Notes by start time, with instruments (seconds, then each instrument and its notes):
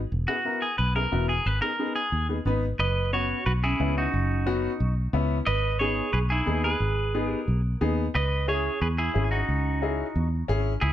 0.12 fingered electric bass E1
0.28 upright piano B3 E4 G#4, clean electric guitar F#4
0.45 upright piano B3 E4 A#4
0.62 clean electric guitar G#4
0.78 fingered electric bass B1, clean electric guitar B4
0.95 upright piano B3 E4 G#4, clean electric guitar A#4
1.12 fingered electric bass E1, upright piano B3 E4 F#4
1.29 clean electric guitar G#4
1.46 fingered electric bass G#1, clean electric guitar B4
1.62 upright piano B3 D#4 G#4, clean electric guitar A#4
1.79 upright piano B3 D#4 G#4
1.96 clean electric guitar G#4
2.12 fingered electric bass D#2
2.29 upright piano B3 D#4 G#4
2.45 fingered electric bass G#1, upright piano B3 D#4 B4
2.79 fingered electric bass F#1, clarinet B4, clean electric guitar B4 D#5
3.13 upright piano B3 C#4 F#4, clarinet F#4, clean electric guitar F#4 C#5
3.46 fingered electric bass B1, clarinet F#4, clean electric guitar F#4 B4
3.63 clarinet C#4, clean electric guitar E4 G#4
3.80 fingered electric bass C#2, upright piano B3 C#4 E4
3.96 clarinet C#4, clean electric guitar D#4 F#4
4.14 fingered electric bass F#1
4.46 upright piano B3 C#4 F#4
4.80 fingered electric bass B1
5.13 fingered electric bass C#2, upright piano B3 C#4 E4
5.47 fingered electric bass G#1, clean electric guitar B4 D#5, clarinet B4
5.79 upright piano B3 D#4 G#4, clarinet G#4, clean electric guitar G#4 C#5
6.13 fingered electric bass B1, clean electric guitar G#4 B4, clarinet G#4
6.30 clarinet D#4, clean electric guitar E4 G#4
6.46 fingered electric bass D#2, upright piano B3 D#4 G#4
6.64 clarinet G#4, clean electric guitar G#4 B4
6.80 fingered electric bass G#1
7.14 upright piano B3 D#4 G#4
7.28 clarinet G4, clean electric guitar A#4
7.48 fingered electric bass B1
7.81 fingered electric bass D#2, upright piano B3 D#4 G#4
8.15 fingered electric bass C#2, clean electric guitar B4 D#5, clarinet B4
8.47 upright piano C#4 E4 G#4, clean electric guitar G#4 C#5, clarinet G#4
8.81 fingered electric bass E2, clean electric guitar G#4 B4, clarinet G#4
8.98 clarinet E4, clean electric guitar E4 G#4
9.14 fingered electric bass G#1, upright piano C#4 E4 G#4
9.24 clarinet E4, clean electric guitar G#4
9.31 clarinet C#4, clean electric guitar D#4 F#4
9.48 fingered electric bass C#2
9.82 upright piano C#4 E4 G#4
10.16 fingered electric bass E2
10.48 fingered electric bass G#1, upright piano C#4 E4 G#4
10.81 fingered electric bass C#2, clarinet E4, clean electric guitar E4 G#4